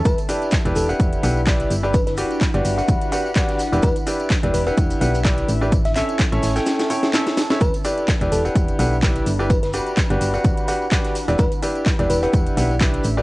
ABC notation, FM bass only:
X:1
M:4/4
L:1/16
Q:"Swing 16ths" 1/4=127
K:Edor
V:1 name="FM bass" clef=bass
E,,, z4 E,,, E,,, z E,,, z B,,,3 z G,,,2- | G,,,2 z3 G,,, G,,, z D,,, z6 E,,, | E,,, z4 E,,, E,,, z E,,, z B,,,3 z A,,,2- | A,,,2 z3 A,,, A,,, z8 z |
E,,, z4 E,,, E,,, z E,,, z B,,,3 z G,,,2- | G,,,2 z3 G,,, G,,, z D,,, z6 E,,, | E,,, z4 E,,, E,,, z E,,, z B,,,3 z A,,,2 |]